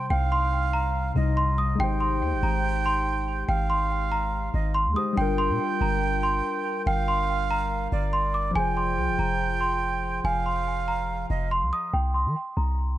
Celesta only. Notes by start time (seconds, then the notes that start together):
0.10 G5
0.32 C6
0.73 A#5
1.37 C6
1.58 D#6
1.80 G5
2.00 C6
2.43 A#5
2.86 C6
3.49 G5
3.70 C6
4.12 A#5
4.74 C6
4.96 D#6
5.17 G5
5.38 C6
5.81 A#5
6.23 C6
6.87 G5
7.08 C6
7.51 A#5
8.13 C6
8.34 D6
8.55 G#5
8.77 C6
9.19 A#5
9.61 C6
10.25 G#5
10.46 C6
10.88 A#5
11.51 C6
11.73 D#6
11.93 G5
12.14 C6
12.57 A#5